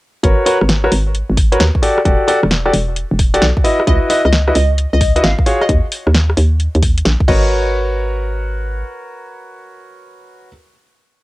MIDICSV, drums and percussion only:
0, 0, Header, 1, 2, 480
1, 0, Start_track
1, 0, Key_signature, 5, "minor"
1, 0, Tempo, 454545
1, 250, Time_signature, 4, 2, 24, 8
1, 11863, End_track
2, 0, Start_track
2, 0, Title_t, "Drums"
2, 249, Note_on_c, 9, 36, 111
2, 250, Note_on_c, 9, 42, 65
2, 355, Note_off_c, 9, 36, 0
2, 356, Note_off_c, 9, 42, 0
2, 490, Note_on_c, 9, 46, 115
2, 595, Note_off_c, 9, 46, 0
2, 648, Note_on_c, 9, 37, 69
2, 729, Note_on_c, 9, 38, 119
2, 729, Note_on_c, 9, 42, 68
2, 754, Note_off_c, 9, 37, 0
2, 834, Note_off_c, 9, 38, 0
2, 834, Note_off_c, 9, 42, 0
2, 889, Note_on_c, 9, 37, 67
2, 969, Note_on_c, 9, 46, 108
2, 995, Note_off_c, 9, 37, 0
2, 1075, Note_off_c, 9, 46, 0
2, 1211, Note_on_c, 9, 42, 64
2, 1317, Note_off_c, 9, 42, 0
2, 1449, Note_on_c, 9, 36, 108
2, 1451, Note_on_c, 9, 46, 120
2, 1555, Note_off_c, 9, 36, 0
2, 1556, Note_off_c, 9, 46, 0
2, 1609, Note_on_c, 9, 42, 69
2, 1690, Note_off_c, 9, 42, 0
2, 1690, Note_on_c, 9, 38, 122
2, 1690, Note_on_c, 9, 42, 69
2, 1796, Note_off_c, 9, 38, 0
2, 1796, Note_off_c, 9, 42, 0
2, 1848, Note_on_c, 9, 36, 108
2, 1930, Note_on_c, 9, 46, 113
2, 1954, Note_off_c, 9, 36, 0
2, 2036, Note_off_c, 9, 46, 0
2, 2089, Note_on_c, 9, 37, 74
2, 2169, Note_on_c, 9, 36, 116
2, 2169, Note_on_c, 9, 42, 63
2, 2194, Note_off_c, 9, 37, 0
2, 2275, Note_off_c, 9, 36, 0
2, 2275, Note_off_c, 9, 42, 0
2, 2410, Note_on_c, 9, 46, 105
2, 2515, Note_off_c, 9, 46, 0
2, 2569, Note_on_c, 9, 37, 75
2, 2650, Note_on_c, 9, 38, 122
2, 2650, Note_on_c, 9, 42, 67
2, 2675, Note_off_c, 9, 37, 0
2, 2756, Note_off_c, 9, 38, 0
2, 2756, Note_off_c, 9, 42, 0
2, 2808, Note_on_c, 9, 37, 67
2, 2889, Note_on_c, 9, 46, 110
2, 2913, Note_off_c, 9, 37, 0
2, 2995, Note_off_c, 9, 46, 0
2, 3129, Note_on_c, 9, 42, 59
2, 3235, Note_off_c, 9, 42, 0
2, 3370, Note_on_c, 9, 36, 112
2, 3370, Note_on_c, 9, 46, 114
2, 3475, Note_off_c, 9, 36, 0
2, 3475, Note_off_c, 9, 46, 0
2, 3529, Note_on_c, 9, 42, 69
2, 3609, Note_off_c, 9, 42, 0
2, 3609, Note_on_c, 9, 38, 122
2, 3609, Note_on_c, 9, 42, 65
2, 3715, Note_off_c, 9, 38, 0
2, 3715, Note_off_c, 9, 42, 0
2, 3768, Note_on_c, 9, 36, 113
2, 3850, Note_on_c, 9, 46, 108
2, 3874, Note_off_c, 9, 36, 0
2, 3956, Note_off_c, 9, 46, 0
2, 4009, Note_on_c, 9, 37, 75
2, 4089, Note_on_c, 9, 36, 121
2, 4090, Note_on_c, 9, 42, 65
2, 4115, Note_off_c, 9, 37, 0
2, 4195, Note_off_c, 9, 36, 0
2, 4195, Note_off_c, 9, 42, 0
2, 4328, Note_on_c, 9, 46, 107
2, 4434, Note_off_c, 9, 46, 0
2, 4488, Note_on_c, 9, 37, 66
2, 4568, Note_on_c, 9, 38, 127
2, 4568, Note_on_c, 9, 42, 69
2, 4593, Note_off_c, 9, 37, 0
2, 4674, Note_off_c, 9, 38, 0
2, 4674, Note_off_c, 9, 42, 0
2, 4726, Note_on_c, 9, 37, 70
2, 4807, Note_on_c, 9, 46, 103
2, 4832, Note_off_c, 9, 37, 0
2, 4913, Note_off_c, 9, 46, 0
2, 5049, Note_on_c, 9, 42, 63
2, 5154, Note_off_c, 9, 42, 0
2, 5289, Note_on_c, 9, 36, 120
2, 5289, Note_on_c, 9, 46, 108
2, 5394, Note_off_c, 9, 36, 0
2, 5394, Note_off_c, 9, 46, 0
2, 5450, Note_on_c, 9, 42, 65
2, 5530, Note_off_c, 9, 42, 0
2, 5530, Note_on_c, 9, 38, 127
2, 5530, Note_on_c, 9, 42, 63
2, 5635, Note_off_c, 9, 38, 0
2, 5635, Note_off_c, 9, 42, 0
2, 5687, Note_on_c, 9, 36, 115
2, 5769, Note_on_c, 9, 46, 107
2, 5793, Note_off_c, 9, 36, 0
2, 5874, Note_off_c, 9, 46, 0
2, 5927, Note_on_c, 9, 37, 72
2, 6008, Note_on_c, 9, 36, 113
2, 6008, Note_on_c, 9, 42, 67
2, 6033, Note_off_c, 9, 37, 0
2, 6114, Note_off_c, 9, 36, 0
2, 6114, Note_off_c, 9, 42, 0
2, 6249, Note_on_c, 9, 46, 103
2, 6354, Note_off_c, 9, 46, 0
2, 6407, Note_on_c, 9, 37, 69
2, 6489, Note_on_c, 9, 38, 126
2, 6489, Note_on_c, 9, 42, 69
2, 6513, Note_off_c, 9, 37, 0
2, 6595, Note_off_c, 9, 38, 0
2, 6595, Note_off_c, 9, 42, 0
2, 6648, Note_on_c, 9, 37, 68
2, 6729, Note_on_c, 9, 46, 104
2, 6754, Note_off_c, 9, 37, 0
2, 6834, Note_off_c, 9, 46, 0
2, 6968, Note_on_c, 9, 42, 63
2, 7073, Note_off_c, 9, 42, 0
2, 7127, Note_on_c, 9, 42, 34
2, 7208, Note_on_c, 9, 36, 115
2, 7208, Note_on_c, 9, 46, 111
2, 7233, Note_off_c, 9, 42, 0
2, 7313, Note_off_c, 9, 36, 0
2, 7313, Note_off_c, 9, 46, 0
2, 7367, Note_on_c, 9, 42, 68
2, 7449, Note_off_c, 9, 42, 0
2, 7449, Note_on_c, 9, 38, 127
2, 7449, Note_on_c, 9, 42, 65
2, 7554, Note_off_c, 9, 38, 0
2, 7554, Note_off_c, 9, 42, 0
2, 7607, Note_on_c, 9, 36, 115
2, 7688, Note_off_c, 9, 36, 0
2, 7688, Note_on_c, 9, 36, 113
2, 7689, Note_on_c, 9, 49, 89
2, 7794, Note_off_c, 9, 36, 0
2, 7794, Note_off_c, 9, 49, 0
2, 11863, End_track
0, 0, End_of_file